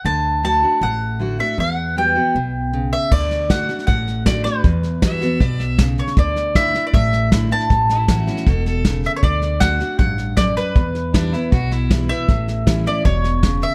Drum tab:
CC |----------------|----------------|x---------------|----------------|
HH |----------------|----------------|----p-------p---|----p-------p---|
SD |----------------|----------------|o-o-o-ooo-o-o-o-|o-o-o-o-o-o-o-oo|
BD |----------------|----------------|o---o---o---o---|o---o---o---o---|

CC |----------------|----------------|----------------|----------------|
HH |----p-------p---|----p-------p---|----p-------p---|----p-------p---|
SD |o-o-o-o-o-o-o-oo|o-o-o-ooo-o-o-o-|o-o-o-o-o-o-o-o-|o-o-o-o-o-o-o-o-|
BD |o---o---o---o---|o---o---o---o---|o---o---o---o---|o---o---o---o---|

CC |----------------|
HH |----p-------p---|
SD |o-o-o-o-o-o-o-o-|
BD |o---o---o---o---|